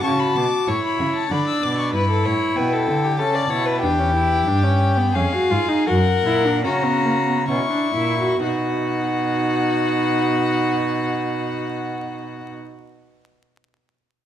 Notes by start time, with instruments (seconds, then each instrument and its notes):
0.04 cello C#3, viola F#4, violin A5 C#6
0.20 violin B5
0.36 cello B2, violin D6
0.68 cello A2, viola E4, violin C#5 C#6
0.84 violin B5
0.99 cello C#3
1.15 violin A5
1.31 cello D3, viola D4, violin D5 B5
1.48 violin E6
1.62 cello B2, violin D6
1.78 violin C#6
1.93 cello G2, viola E4, violin B4 B5
2.10 violin A4
2.25 cello A2, violin C#5
2.56 cello B2, violin B4 G5
2.73 violin A4
2.88 cello D3
3.04 violin G4
3.19 cello C#3, viola C#4, violin A4 A5
3.35 violin D5
3.50 cello B2, viola E4, violin C#5
3.66 violin B4
3.81 cello E2, viola D4, violin G4 G5
3.99 viola C#4
4.15 viola E4
4.48 cello G2, viola D4
4.63 viola C#4
4.97 viola B3
5.15 cello F2, viola C#4, violin G#4 F5
5.33 viola F#4
5.51 cello G#2, viola F4
5.69 viola D#4
5.87 cello F#2, viola F#4, violin A#4 F#5
6.25 cello A#2, viola E4
6.45 viola D4
6.64 cello C#3, viola C#4, violin F#4 A#5
6.85 viola B3
7.05 viola A#3
7.27 viola B3
7.49 cello B2, viola C#4, violin E4 C#6
7.72 viola D4
7.95 cello A#2, viola E4
8.19 viola F#4
8.43 cello B2, viola D#4, violin F#4 F#5